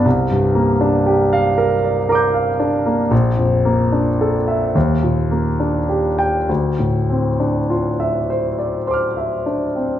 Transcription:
\new Staff \with { instrumentName = "Grand piano" } { \time 6/8 \key d \minor \tempo 4. = 36 << { r4 r16 f''8 r16 <bes'' d''' g'''>4 | r4 r16 e''16 r4 r16 g''16 | r4 r16 e''8 r16 <c''' d''' f'''>4 | } \\ { c,16 g,16 bes16 d'16 g'8 bes'16 d''16 bes'16 f''16 d'16 bes16 | bes,,16 f,16 bes16 d'16 a'8 ees,16 bes,16 bes16 d'16 g'8 | d,16 a,16 c'16 d'16 f'8 c''16 d''16 c''16 e''16 d'16 c'16 | } >> }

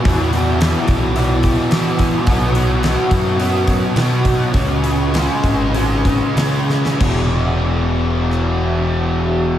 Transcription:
<<
  \new Staff \with { instrumentName = "Distorted electric guitar" } { \clef bass \time 4/4 \key e \major \tempo 4 = 103 <e, b, e>8 <b, e>8 <e, b, e>4 <e, b, e>4 <e, b, e>4 | <b, fis b>8 <fis b>8 <b, fis b>4 <b, fis b>4 <b, fis b>4 | <cis gis cis'>8 <gis cis'>8 <cis gis cis'>4 <cis gis cis'>4 <cis gis cis'>4 | <e, b, e>1 | }
  \new Staff \with { instrumentName = "Fingered electric bass" } { \clef bass \time 4/4 \key e \major e,4. b,,4. e4 | b,,4. fis,4. b,4 | cis,4. gis,,4. cis4 | e,,1 | }
  \new DrumStaff \with { instrumentName = "Drums" } \drummode { \time 4/4 <hho bd>8 <hho sn>8 <hho sn>8 <hho bd>8 hho8 <hho bd>8 <hho sn>8 <hho bd>8 | <hho bd>8 hho8 <hho sn>8 <hho bd>8 hho8 <hho bd>8 <hho sn>8 <hho bd>8 | <hho bd>8 hho8 <hho sn>8 <hho bd>8 hho8 <hho bd>8 <hho sn>8 sn16 sn16 | <cymc bd>4 r4 ss4 r4 | }
>>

